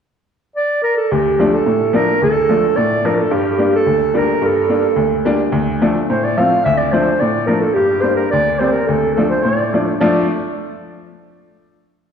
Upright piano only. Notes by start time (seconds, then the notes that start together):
1.11 D2
1.39 F3 A3 D4
1.66 A2
1.93 F3 A3 D4
2.22 D2
2.49 F3 A3 D4
2.77 A2
3.05 F3 A3 D4
3.31 G2
3.58 G3 A#3 D4
3.86 D2
4.14 G3 A#3 D4
4.42 G2
4.69 G3 A#3 D4
4.96 D2
5.25 G3 A#3 D4
5.52 D2
5.82 F3 A3 D4
6.10 A2
6.38 F3 A3 C4
6.66 D2
6.93 F3 A3 D4
7.21 A2
7.48 F3 A3 D4
7.76 G2
8.03 G3 A#3 D4
8.33 D2
8.60 G3 A#3 C4
8.89 D2
9.17 F3 A3 D4
9.45 A2
9.73 F3 A3 D4
10.01 F3 A3 D4